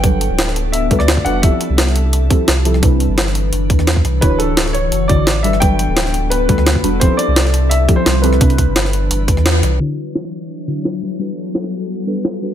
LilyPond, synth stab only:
\new Staff \with { instrumentName = "Synth stab" } { \time 4/4 \key g \lydian \tempo 4 = 172 <fis g d' a' b'>2~ <fis g d' a' b'>8 <g d' fis' a' b'>4 <g d' fis' a' b'>8 | <f c' e' g' a'>2~ <f c' e' g' a'>8 <f c' e' g' a'>4 <f c' e' g' a'>8 | <c c' d' e' b'>2~ <c c' d' e' b'>8 r4. | <d d' e' fis' cis''>2~ <d d' e' fis' cis''>8 <d d' e' fis' d''>4 <g d' fis' a' b'>8 |
<fis g d' a' b'>2~ <fis g d' a' b'>8 <g d' fis' a' b'>4 <g d' fis' a' b'>8 | <f c' e' g' a'>2~ <f c' e' g' a'>8 <f c' e' g' a'>4 <f c' e' g' a'>8 | <c c' d' e' b'>2~ <c c' d' e' b'>8 r4. | <d d' e' fis' cis''>2~ <d d' e' fis' cis''>8 <d d' e' fis' cis''>4 <g d' fis' a' b'>8 |
<g d' fis' a' b'>2~ <g d' fis' a' b'>8 <g d' fis' a' b'>4 <g d' fis' a' b'>8 | }